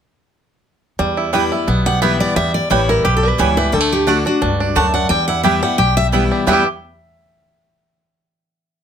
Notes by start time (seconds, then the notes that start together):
0.99 E2 G3
1.17 E4
1.33 E3 G3 B3 E4 B4 G5
1.52 B3 E4
1.67 B1 B2 B3
1.86 G3 F#5
2.02 E3 G3 B3 E4 B4 E5 G5
2.20 G3 D5
2.36 E2 G3 E5
2.54 D5
2.70 A1 E3 G3 B3 E4 B4 C#5 G5
2.89 E4 A#4
3.04 B1 B2 G4 B4
3.17 A4
3.23 G3
3.28 B4
3.38 C#2 E3 G3 B3 E4 B4 C#5 G5
3.57 G3 B3 E4 B4
3.72 D2 D3 G3 A4
3.80 A3
3.92 G4
4.07 D3 A3 D4 F#4 D5 F#5
4.25 D4 F#4
4.41 C#2 G2 D4
4.60 D4
4.75 D2 F#2 A3 F#4 D5 F#5 A5
4.94 D4 F#5
5.09 E2 G3 G5
5.28 E4 F#5
5.43 E3 G3 B3 E4 G4 B4 E5 G5
5.62 G3 B3 E4 F#5
5.78 B1 B2 G4 G5
5.97 G3 E5
6.12 E3 G3 B3 E4 B4 G5
6.32 G3
6.46 E2 B2 E3 G3 B3 E4 B4 E5 G5
6.51 E4 G4